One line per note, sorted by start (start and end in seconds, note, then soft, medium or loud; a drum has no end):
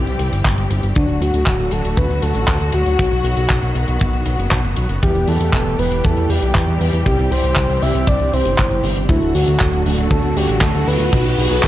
0.00 0.92 E3 medium
0.00 0.92 G3 medium
0.00 0.94 C4 medium
0.00 0.94 G4 medium
0.07 0.17 C2 medium
0.07 closed hi-hat soft
0.19 0.30 C2 loud
0.19 closed hi-hat loud
0.32 0.43 G1 medium
0.32 closed hi-hat medium
0.45 0.55 G1 loud
0.45 kick loud
0.45 clap loud
0.45 closed hi-hat medium
0.58 0.68 G1 medium
0.58 closed hi-hat medium
0.70 0.81 G1 loud
0.70 closed hi-hat loud
0.83 0.94 G1 medium
0.83 closed hi-hat medium
0.95 1.07 D2 loud
0.95 2.97 D3 medium
0.95 4.99 F#3 medium
0.95 2.97 A3 medium
0.95 1.23 D4 medium
0.95 4.98 F#4 medium
0.95 kick loud
0.95 closed hi-hat medium
1.08 1.19 D1 medium
1.08 closed hi-hat soft
1.21 1.32 D2 medium
1.21 1.74 F#4 loud
1.21 closed hi-hat medium
1.34 1.44 D2 medium
1.34 closed hi-hat medium
1.46 1.57 D1 loud
1.46 kick loud
1.46 clap loud
1.46 closed hi-hat medium
1.59 1.70 D1 medium
1.59 closed hi-hat soft
1.71 1.83 D1 medium
1.71 1.99 A4 loud
1.71 closed hi-hat medium
1.85 1.95 D1 medium
1.85 closed hi-hat medium
1.97 2.08 D2 loud
1.97 2.24 B4 loud
1.97 kick loud
1.97 closed hi-hat medium
2.10 2.21 D2 medium
2.10 closed hi-hat soft
2.22 2.33 D2 loud
2.22 2.75 A4 loud
2.22 closed hi-hat medium
2.35 2.46 A1 medium
2.35 closed hi-hat medium
2.48 2.59 D2 loud
2.48 kick loud
2.48 clap loud
2.48 closed hi-hat medium
2.61 2.72 D2 medium
2.61 closed hi-hat soft
2.72 2.84 D2 medium
2.72 3.50 F#4 loud
2.72 closed hi-hat loud
2.86 2.97 D2 medium
2.86 closed hi-hat medium
2.99 3.10 B1 loud
2.99 5.00 D#3 medium
2.99 7.02 B3 medium
2.99 kick loud
2.99 closed hi-hat medium
3.12 3.22 B1 medium
3.12 closed hi-hat soft
3.24 3.35 B1 medium
3.24 closed hi-hat medium
3.37 3.48 B1 medium
3.37 closed hi-hat medium
3.49 3.61 B1 loud
3.49 kick loud
3.49 clap loud
3.49 closed hi-hat medium
3.63 3.73 B1 medium
3.63 closed hi-hat soft
3.75 3.86 B1 medium
3.75 closed hi-hat loud
3.88 3.99 B1 medium
3.88 closed hi-hat medium
3.99 4.12 B1 loud
3.99 kick loud
3.99 closed hi-hat medium
4.13 4.24 B1 medium
4.13 closed hi-hat soft
4.26 4.37 B1 loud
4.26 closed hi-hat loud
4.39 4.49 F#1 medium
4.39 closed hi-hat medium
4.51 4.62 B1 loud
4.51 kick loud
4.51 clap loud
4.51 closed hi-hat medium
4.64 4.75 F#1 medium
4.64 closed hi-hat soft
4.76 4.88 B1 loud
4.76 closed hi-hat medium
4.89 5.00 F#1 medium
4.89 closed hi-hat medium
5.03 5.13 E2 loud
5.03 5.76 E3 medium
5.03 9.05 E3 medium
5.03 9.05 G3 medium
5.03 5.76 B3 medium
5.03 5.76 E4 medium
5.03 5.76 G4 medium
5.03 9.05 G4 medium
5.03 5.30 G4 loud
5.03 5.76 B4 medium
5.03 kick loud
5.03 closed hi-hat medium
5.15 5.26 E1 medium
5.15 closed hi-hat soft
5.27 5.38 E2 medium
5.27 5.81 A4 loud
5.27 open hi-hat loud
5.40 5.51 E2 medium
5.40 closed hi-hat medium
5.53 5.64 E1 loud
5.53 kick loud
5.53 clap loud
5.53 closed hi-hat medium
5.66 5.76 E1 medium
5.66 closed hi-hat soft
5.79 5.89 E1 loud
5.79 7.03 E3 loud
5.79 7.03 B3 medium
5.79 7.03 E4 medium
5.79 7.03 G4 medium
5.79 7.03 B4 loud
5.79 6.06 B4 loud
5.79 open hi-hat loud
5.91 6.02 E1 medium
5.91 closed hi-hat medium
6.04 6.15 E2 loud
6.04 6.31 A4 loud
6.04 kick loud
6.04 closed hi-hat medium
6.17 6.27 E2 medium
6.17 closed hi-hat soft
6.29 6.40 E2 medium
6.29 6.81 G4 medium
6.29 open hi-hat loud
6.42 6.53 B1 medium
6.42 closed hi-hat medium
6.55 6.66 E2 loud
6.55 kick loud
6.55 clap loud
6.55 closed hi-hat medium
6.68 6.78 E2 medium
6.68 closed hi-hat soft
6.81 6.91 E2 loud
6.81 open hi-hat loud
6.93 7.04 E2 medium
6.93 closed hi-hat medium
7.06 7.17 C2 loud
7.06 7.79 C3 medium
7.06 7.79 C4 medium
7.06 9.07 C4 medium
7.06 7.79 E4 medium
7.06 7.33 G4 medium
7.06 7.79 G4 medium
7.06 kick loud
7.06 closed hi-hat medium
7.19 7.29 C2 medium
7.19 closed hi-hat soft
7.31 7.42 C2 medium
7.31 7.84 C5 loud
7.31 open hi-hat loud
7.44 7.55 C2 medium
7.44 closed hi-hat medium
7.56 7.67 C2 loud
7.56 kick loud
7.56 clap loud
7.56 closed hi-hat medium
7.70 7.80 C2 medium
7.70 open hi-hat medium
7.82 7.93 C2 medium
7.82 9.06 C3 medium
7.82 9.06 C4 medium
7.82 9.06 E4 medium
7.82 9.06 G4 medium
7.82 9.06 C5 loud
7.82 8.10 E5 loud
7.82 open hi-hat loud
7.95 8.05 C2 medium
7.95 closed hi-hat medium
8.07 8.18 C2 loud
8.07 8.35 D5 loud
8.07 kick loud
8.07 closed hi-hat medium
8.20 8.31 C2 medium
8.20 closed hi-hat soft
8.33 8.44 C2 medium
8.33 8.84 C5 medium
8.33 open hi-hat loud
8.45 8.56 G1 medium
8.45 closed hi-hat medium
8.58 8.69 G1 loud
8.58 kick medium
8.58 clap loud
8.58 closed hi-hat medium
8.71 8.82 G1 medium
8.71 closed hi-hat soft
8.84 8.95 G1 loud
8.84 open hi-hat loud
8.97 9.07 G1 medium
8.97 closed hi-hat medium
9.09 9.20 D2 loud
9.09 11.11 D3 medium
9.09 9.83 D3 medium
9.09 11.68 F#3 medium
9.09 11.11 A3 medium
9.09 9.83 A3 medium
9.09 9.83 D4 medium
9.09 9.33 E4 loud
9.09 11.68 F#4 medium
9.09 9.83 F#4 medium
9.09 9.83 A4 medium
9.09 kick loud
9.09 closed hi-hat medium
9.09 riser medium
9.22 9.33 D1 medium
9.22 closed hi-hat soft
9.35 9.45 D2 medium
9.35 9.82 F#4 loud
9.35 open hi-hat loud
9.48 9.58 D2 medium
9.48 closed hi-hat medium
9.59 9.71 D1 loud
9.59 kick medium
9.59 clap loud
9.59 closed hi-hat medium
9.73 9.84 D1 medium
9.73 closed hi-hat soft
9.85 9.96 D1 medium
9.85 11.10 D3 loud
9.85 11.10 A3 medium
9.85 11.10 D4 medium
9.85 11.10 F#4 medium
9.85 11.10 A4 loud
9.85 open hi-hat loud
9.98 10.09 D1 medium
9.98 closed hi-hat medium
10.11 10.22 D2 loud
10.11 10.38 A4 loud
10.11 kick loud
10.11 closed hi-hat medium
10.23 10.34 D2 medium
10.23 closed hi-hat soft
10.37 10.47 D2 medium
10.37 10.62 G4 medium
10.37 open hi-hat loud
10.49 10.60 A1 medium
10.49 closed hi-hat medium
10.61 10.72 D2 loud
10.61 10.89 A4 loud
10.61 kick loud
10.61 clap loud
10.61 closed hi-hat medium
10.75 10.85 D2 medium
10.75 closed hi-hat soft
10.87 10.98 D2 loud
10.87 11.68 B4 loud
10.87 open hi-hat loud
11.00 11.11 D2 medium
11.00 closed hi-hat medium
11.12 11.23 B1 loud
11.12 11.68 B2 medium
11.12 11.68 D#3 medium
11.12 11.68 B3 medium
11.12 11.68 D#4 medium
11.12 11.68 F#4 medium
11.12 kick loud
11.12 closed hi-hat medium
11.25 11.36 B1 medium
11.25 closed hi-hat soft
11.38 11.49 B1 medium
11.38 open hi-hat loud
11.51 11.61 B1 medium
11.51 closed hi-hat medium
11.63 11.68 B1 loud
11.63 kick medium
11.63 clap loud
11.63 closed hi-hat medium